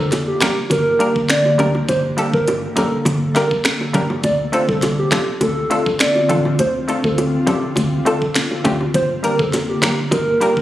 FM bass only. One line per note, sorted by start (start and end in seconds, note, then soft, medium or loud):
0.00 0.32 F1 loud
0.71 0.94 G1 loud
1.59 1.82 D2 medium
1.89 2.12 G1 loud
2.34 2.68 G1 loud
3.06 3.29 G1 loud
3.95 4.18 G1 medium
4.24 4.47 D2 loud
4.69 5.03 C2 medium
5.41 5.65 D2 loud
6.30 6.53 A1 medium
6.59 6.82 D2 loud
7.04 7.38 D2 medium
7.77 8.00 D2 loud
8.65 8.88 D2 medium
8.94 9.18 G1 loud
9.39 9.74 F1 loud
10.12 10.35 G1 loud